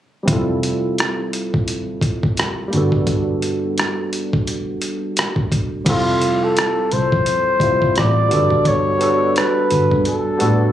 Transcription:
0.23 2.66 G3 medium
0.23 2.67 C4 medium
0.28 2.68 F1 medium
0.28 2.68 E4 medium
0.28 2.69 F4 medium
0.28 kick medium
0.28 closed hi-hat medium
0.33 2.70 A4 medium
0.63 closed hi-hat medium
0.98 cross-stick medium
0.98 closed hi-hat medium
1.33 closed hi-hat medium
1.54 kick medium
1.68 closed hi-hat medium
2.01 kick medium
2.01 closed hi-hat soft
2.23 kick medium
2.37 cross-stick medium
2.37 closed hi-hat medium
2.68 5.45 G3 medium
2.68 2.79 A#3 soft
2.72 5.48 G1 medium
2.72 5.47 D4 medium
2.72 5.48 F#4 medium
2.72 closed hi-hat medium
2.77 5.49 B3 medium
2.77 5.50 A4 medium
2.92 kick medium
3.07 kick medium
3.07 closed hi-hat medium
3.42 closed hi-hat medium
3.78 cross-stick medium
3.78 closed hi-hat medium
4.13 closed hi-hat medium
4.33 kick medium
4.47 closed hi-hat medium
4.82 closed hi-hat soft
5.17 cross-stick medium
5.17 closed hi-hat medium
5.36 kick medium
5.52 kick medium
5.52 closed hi-hat medium
5.84 6.73 F1 medium
5.84 6.11 G3 medium
5.84 6.12 C4 medium
5.84 6.12 E4 medium
5.84 6.13 F4 medium
5.84 kick loud
5.84 closed hi-hat medium
5.84 crash medium
5.89 6.45 F4 medium
5.89 6.14 A4 medium
6.22 closed hi-hat medium
6.44 6.94 A4 medium
6.57 cross-stick medium
6.57 closed hi-hat medium
6.91 7.09 C2 medium
6.91 7.99 C5 loud
6.91 closed hi-hat medium
7.12 7.25 F2 medium
7.12 kick medium
7.26 closed hi-hat medium
7.59 7.91 F1 medium
7.59 7.86 G3 medium
7.59 7.86 C4 medium
7.59 7.87 E4 medium
7.59 7.88 F4 medium
7.59 kick medium
7.59 closed hi-hat medium
7.64 7.88 C5 medium
7.82 kick medium
7.96 8.26 A1 medium
7.96 8.69 D5 loud
7.96 cross-stick medium
7.96 closed hi-hat medium
8.29 9.38 G1 medium
8.29 8.95 G3 medium
8.29 8.95 B3 medium
8.29 8.96 D4 medium
8.29 8.96 F#4 medium
8.29 closed hi-hat medium
8.33 8.97 A4 medium
8.50 kick medium
8.65 9.39 C#5 loud
8.65 kick medium
8.65 closed hi-hat medium
8.98 9.50 G3 medium
8.98 9.51 B3 medium
8.98 9.51 D4 medium
8.98 9.52 F#4 medium
8.98 closed hi-hat medium
9.03 9.52 A4 medium
9.36 10.06 B4 medium
9.36 cross-stick medium
9.36 closed hi-hat medium
9.71 9.88 G1 medium
9.71 closed hi-hat medium
9.91 10.04 G2 medium
9.91 kick medium
10.05 10.72 A4 medium
10.05 closed hi-hat medium
10.37 10.65 G3 medium
10.37 10.65 B3 medium
10.37 10.66 D4 medium
10.37 10.66 F#4 medium
10.37 closed hi-hat medium
10.41 10.70 A2 medium
10.41 10.67 A4 medium

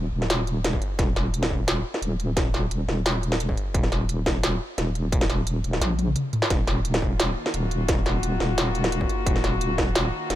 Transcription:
0.00 0.12 D#1 medium
0.13 0.81 D#1 medium
0.22 snare soft
0.30 snare loud
0.30 closed hi-hat medium
0.47 closed hi-hat soft
0.64 snare medium
0.64 closed hi-hat medium
0.73 kick medium
0.82 closed hi-hat soft
0.99 1.84 D#1 loud
0.99 kick loud
0.99 snare soft
0.99 closed hi-hat medium
1.16 snare medium
1.16 closed hi-hat soft
1.34 closed hi-hat medium
1.43 snare medium
1.50 kick medium
1.68 snare loud
1.68 closed hi-hat medium
1.94 snare soft
2.02 2.87 D#1 medium
2.02 closed hi-hat medium
2.20 closed hi-hat soft
2.37 kick loud
2.37 snare medium
2.37 closed hi-hat medium
2.54 snare medium
2.54 closed hi-hat soft
2.71 closed hi-hat medium
2.88 3.56 D#1 medium
2.88 snare soft
3.06 snare loud
3.06 closed hi-hat medium
3.23 closed hi-hat soft
3.32 snare medium
3.40 closed hi-hat medium
3.49 kick medium
3.57 closed hi-hat soft
3.74 4.60 D#1 loud
3.74 kick loud
3.74 closed hi-hat medium
3.83 snare soft
3.92 snare medium
3.92 closed hi-hat soft
4.09 closed hi-hat medium
4.26 kick medium
4.26 snare medium
4.43 snare loud
4.43 closed hi-hat medium
4.78 5.63 D#1 medium
4.78 snare medium
4.78 closed hi-hat medium
4.95 closed hi-hat soft
5.12 kick loud
5.12 closed hi-hat medium
5.21 snare medium
5.30 snare medium
5.30 closed hi-hat soft
5.47 closed hi-hat medium
5.64 5.81 D#1 medium
5.64 closed hi-hat soft
5.73 snare medium
5.81 6.16 A#1 medium
5.81 snare medium
5.81 closed hi-hat medium
5.90 high tom medium
5.99 closed hi-hat soft
5.99 high tom medium
6.08 mid tom medium
6.16 closed hi-hat medium
6.16 mid tom medium
6.33 closed hi-hat soft
6.33 mid tom medium
6.42 snare medium
6.50 7.36 D#1 loud
6.50 10.35 D#3 medium
6.50 kick loud
6.50 snare medium
6.50 closed hi-hat medium
6.62 10.35 A#3 medium
6.67 snare medium
6.67 closed hi-hat soft
6.85 closed hi-hat medium
6.94 10.35 F4 medium
6.94 snare medium
7.02 kick medium
7.20 snare loud
7.20 closed hi-hat medium
7.46 10.35 F#4 medium
7.46 snare medium
7.54 8.39 D#1 medium
7.54 closed hi-hat medium
7.71 closed hi-hat soft
7.88 kick loud
7.88 snare medium
7.88 closed hi-hat medium
8.06 snare medium
8.06 closed hi-hat soft
8.23 closed hi-hat medium
8.40 9.08 D#1 medium
8.40 snare medium
8.58 snare loud
8.58 closed hi-hat medium
8.75 closed hi-hat soft
8.84 snare medium
8.92 closed hi-hat medium
9.01 kick medium
9.09 closed hi-hat soft
9.26 10.12 D#1 medium
9.26 kick loud
9.26 closed hi-hat medium
9.36 snare soft
9.44 snare medium
9.44 closed hi-hat soft
9.61 closed hi-hat medium
9.78 kick medium
9.78 snare medium
9.95 snare loud
9.95 closed hi-hat medium
10.30 10.35 D#1 medium
10.30 snare soft
10.30 closed hi-hat medium

